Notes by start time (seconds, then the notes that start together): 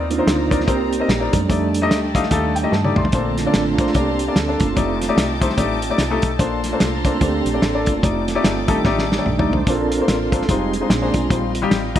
Already playing: D#2 D#3 C5 D5 A#5
0.10 A#3 C4 D4 D#4 F4, closed hi-hat
0.18 C4 D#4 A#4 C5
0.27 D2, snare, closed hi-hat
0.50 C4 D#4 A#4 D5, kick, closed hi-hat
0.60 snare
0.67 C2 A#3 C4 D#4 G4 A#4 C5, kick, closed hi-hat
0.93 closed hi-hat
1.00 C4 D#4 A#4 D#5
1.09 A#1 G4, snare, closed hi-hat
1.20 C4 D#4 A#4 D5
1.33 F#2 G3 A3 D4, kick, closed hi-hat
1.49 F2 A3 D#4 G4 D5 G5 A5, kick, closed hi-hat
1.74 closed hi-hat
1.82 A3 D#4 G4 D#5
1.90 D2, snare, closed hi-hat
2.15 D#3 G3 A3 D4 D#4 G4 D#5 F5, kick, closed hi-hat
2.23 snare
2.31 D#2 A3 D#4 G4 A4 F5, kick, closed hi-hat
2.56 G5, closed hi-hat
2.63 A3 D#4 G4 D#5
2.72 G2 A5, snare
2.84 A3 D#4 G4 D5, high tom
2.96 B1 C6, mid tom
3.05 floor tom
3.12 A#1 A#2 D3 A3 A#3 C4 D4 A4 C5 A#5 C6, kick, closed hi-hat
3.38 A3 D4 F4, snare, closed hi-hat
3.46 A#3 D4 A4 D5
3.54 A1, snare, closed hi-hat
3.78 A#3 D4 A4 C5, kick, closed hi-hat
3.87 snare
3.94 C2 A#3 C4 D4 G4 A4 D5, kick, closed hi-hat
4.19 closed hi-hat
4.28 A#3 D4 A4 D5
4.36 D2 A4, snare, closed hi-hat
4.48 A#3 D4 A4 D5
4.60 F#1 A3 C4 F4, kick, closed hi-hat
4.76 F1 A3 D#4 G4 D5 D#5 G5 D6, kick, closed hi-hat
5.02 snare, closed hi-hat
5.08 A3 D#4 G4 D5
5.17 C2, snare, closed hi-hat
5.41 D#3 G3 A3 D#4 G4 C5, kick, closed hi-hat
5.45 D4
5.50 snare
5.57 A1 A3 D#4 G4 D5, kick, closed hi-hat
5.82 closed hi-hat
5.90 A3 D#4 G4 D5
5.98 C2, snare, closed hi-hat
6.10 A3 D#4 G4 A4
6.22 B1, kick, closed hi-hat
6.39 A#1 A#2 A#3 D4 A4 C5 D5 A#5 C6, kick, closed hi-hat
6.64 A3 D4, snare, closed hi-hat
6.68 F4
6.72 A#3 D4 A4 C5
6.80 C2, snare, closed hi-hat
7.04 A3 A#3 C4 D4 A4 C5, kick, closed hi-hat
7.21 D2 A#3 C4 D4 G4 A4 C5, kick, closed hi-hat
7.46 A#1, closed hi-hat
7.54 A#3 D4 A4 D5
7.62 A1 A4, snare, closed hi-hat
7.74 A#3 D4 A4 D5
7.86 F#1 A3 C4 F4, kick, closed hi-hat
8.03 F1 A3 D#4 G4 D5 G5 D6, kick, closed hi-hat
8.28 snare, closed hi-hat
8.35 A3 D#4 G4 D5
8.44 G1, snare, closed hi-hat
8.68 D#3 G3 A3 D4 D#4 G4 A4, kick, closed hi-hat
8.84 A1 A3 D#4 G4 D5, kick, snare
8.99 snare
9.11 G3 A3 D#4, snare
9.18 A3 D#4 G4 D5
9.26 A#1, mid tom
9.38 A3 D#4 G4 D5, floor tom
9.50 B1 C5, floor tom
9.67 A#1 A#2 A#3 C4 D4 F4 A4 A#4 C5 D5 F5 C6, kick, closed hi-hat
9.92 closed hi-hat
10.00 A#3 D4 A4 C5
10.08 A1 A#4, snare, closed hi-hat
10.32 A#3 D4 A4 C5, kick, closed hi-hat
10.42 snare
10.48 F1 G3 G#3 C4 D#4 F4 G4 C5 D#5 F5 G#5, kick, closed hi-hat
10.73 C4 D4 G#4, closed hi-hat
10.81 G#3 D#4 F4 C5
10.90 A#1 A#2 G#3 C4 D4 D5 G#5 A#5, snare, closed hi-hat
11.01 A#3 D4 G#4 C5
11.14 B1 C4 F4, kick, closed hi-hat
11.30 A#1 A#2 G3 C4 D#4 F4 C5 D#5 F5 G5, kick, closed hi-hat
11.55 closed hi-hat
11.62 G3 D#4 F4 G4
11.71 A1, snare, closed hi-hat
11.95 G3 D#4 F4 D#5, kick, closed hi-hat